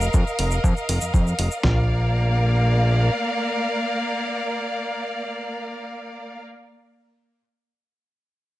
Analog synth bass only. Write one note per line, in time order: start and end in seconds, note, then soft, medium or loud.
0.14 0.24 F2 medium
0.39 0.59 F1 medium
0.64 0.74 F2 loud
0.89 0.99 F1 medium
1.02 1.11 F2 soft
1.14 1.34 F2 medium
1.39 1.49 F1 medium
1.64 3.10 A#1 medium